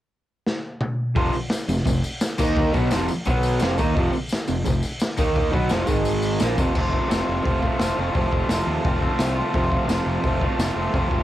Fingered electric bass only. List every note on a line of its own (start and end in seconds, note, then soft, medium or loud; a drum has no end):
1.16 1.32 F1 medium
1.34 muted fingered electric bass stroke soft
1.68 1.85 F1 medium
1.86 2.02 F1 medium
2.39 2.72 D#2 medium
2.74 2.90 B1 loud
2.91 3.08 F1 medium
3.27 3.59 B1 loud
3.61 3.78 F1 loud
3.80 3.95 D#2 medium
3.97 4.13 F1 loud
4.14 muted fingered electric bass stroke soft
4.49 4.65 F1 medium
4.67 4.83 F1 medium
5.18 5.51 D#2 medium
5.54 5.70 B1 loud
5.72 5.88 F1 medium
5.88 6.37 G#1 loud
6.42 6.57 A#1 loud
6.58 6.74 F1 medium
6.76 6.97 F1 medium
7.11 7.22 F1 medium
7.29 7.39 F1 medium
7.46 7.67 F1 medium
7.81 7.91 F1 loud
7.98 8.09 F1 medium
8.15 8.26 F1 medium
8.32 8.43 F1 medium
8.49 8.60 F1 medium
8.67 8.78 D#2 medium
8.85 9.06 F1 medium
9.19 9.41 C2 loud
9.54 9.76 F1 medium
9.88 9.99 F1 medium
10.06 10.17 F1 medium
10.24 10.46 F1 medium
10.59 10.69 F1 medium
10.76 10.87 F1 medium
10.93 11.04 F1 loud
11.11 11.22 F1 medium